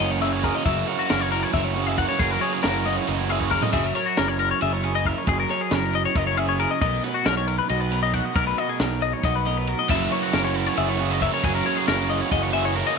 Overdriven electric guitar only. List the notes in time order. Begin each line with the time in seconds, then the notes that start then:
Already playing: E3 A#3 C#4 F#4
0.21 E3 A#3 C#4 F#4
0.42 F#2 C#3 E3 A#3 C#4 F#4
0.65 F#2 C#3 E3 A#3 C#4 F#4
0.87 E3 A#3 C#4 F#4
1.08 E3 A#3 C#4 F#4
1.74 E3 A#3 C#4 F#4
1.97 F#2 C#3 E3 A#3 C#4 F#4
2.19 F#2 C#3 E3 A#3 C#4 F#4
2.41 E3 A#3 C#4 F#4
2.63 E3 A#3 C#4 F#4
3.29 E3 A#3 C#4 F#4
3.51 F#2 C#3 E3 A#3 C#4 F#4
9.88 F#2 C#3 E3 A#3 C#4 F#4
10.11 E3 A#3 C#4 F#4
10.32 E3 A#3 C#4 F#4
10.99 E3 A#3 C#4 F#4
11.20 F#2 C#3 E3 A#3 C#4 F#4
11.42 F#2 C#3 E3 A#3 C#4 F#4
11.64 E3 A#3 C#4 F#4
11.87 E3 A#3 C#4 F#4
12.53 E3 A#3 C#4 F#4
12.74 F#2 C#3 E3 A#3 C#4 F#4